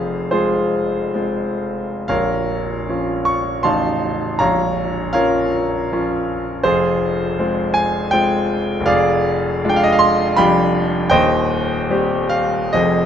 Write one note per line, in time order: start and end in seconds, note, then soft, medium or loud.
0.00 2.06 F1 soft
0.00 2.06 F2 soft
0.00 0.28 G#4 medium
0.00 0.28 C5 medium
0.00 0.32 F5 medium
0.31 1.11 G#3 soft
0.31 1.11 C4 soft
0.31 1.14 F4 medium
0.31 2.06 G#4 medium
0.31 2.09 C5 medium
1.14 2.06 G#3 soft
1.14 2.06 C4 soft
1.14 2.06 F4 soft
2.08 3.60 A#0 soft
2.08 3.60 A#1 medium
2.08 3.22 A#4 medium
2.08 3.22 C#5 medium
2.08 3.25 F5 medium
2.89 3.60 F3 soft
2.89 3.60 C#4 soft
2.89 3.61 F4 soft
3.25 3.64 C#6 medium
3.63 4.37 A0 medium
3.63 4.37 A1 medium
3.63 4.35 F3 soft
3.63 4.36 D#4 soft
3.63 4.36 F4 soft
3.63 4.35 F5 medium
3.63 4.35 A5 medium
3.63 4.39 C6 medium
4.39 6.62 A#0 medium
4.39 6.62 A#1 medium
4.39 5.11 C#5 medium
4.39 5.10 F5 medium
4.39 5.14 A#5 medium
5.13 5.88 F3 soft
5.13 5.88 C#4 soft
5.13 5.88 F4 soft
5.13 6.62 A#4 medium
5.13 6.62 C#5 medium
5.13 6.65 F5 medium
5.92 6.62 F3 soft
5.92 6.62 C#4 soft
5.92 6.62 F4 medium
6.63 8.79 F1 medium
6.63 8.84 F2 medium
6.63 7.39 F4 medium
6.63 7.72 G#4 medium
6.63 7.75 C5 medium
7.39 8.09 G#3 soft
7.39 8.10 C4 soft
7.39 8.10 F4 medium
7.74 8.12 G#5 medium
8.11 8.84 G#3 medium
8.11 8.84 C4 medium
8.11 8.84 F4 medium
8.11 8.87 G5 loud
8.81 10.30 F1 medium
8.86 10.34 F2 medium
8.86 9.65 G#4 medium
8.86 9.65 D5 medium
8.86 9.69 F5 medium
9.64 10.34 G#3 medium
9.64 10.35 D4 medium
9.64 10.35 F4 medium
9.69 9.78 G5 medium
9.76 9.85 F5 medium
9.83 9.93 D#5 medium
9.92 10.01 F5 medium
9.99 10.37 C6 loud
10.37 11.09 F1 medium
10.37 11.10 F2 medium
10.37 11.08 G3 medium
10.37 11.08 D4 medium
10.37 11.08 G4 medium
10.37 11.08 F5 medium
10.37 11.08 G5 medium
10.37 11.11 B5 medium
11.10 12.70 D#1 medium
11.10 12.70 D#2 medium
11.10 12.27 C5 medium
11.10 12.27 D#5 medium
11.10 12.30 G5 loud
11.90 12.71 G3 medium
11.90 12.71 C4 medium
11.90 12.71 G4 medium
12.29 12.74 F5 medium
12.73 13.06 F1 medium
12.73 13.06 F2 medium
12.73 13.06 F3 soft
12.73 13.06 C4 medium
12.73 13.06 G#4 soft
12.73 13.06 D#5 medium